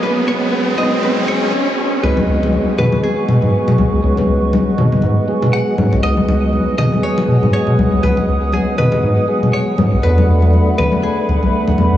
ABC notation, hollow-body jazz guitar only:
X:1
M:4/4
L:1/8
Q:"Swing 16ths" 1/4=120
K:C#m
V:1 name="Hollow-body jazz guitar"
B c2 d B c z2 | B3 B G3 z | z6 f2 | d3 d c2 c2 |
B2 G B3 c2 | B3 B G3 z |]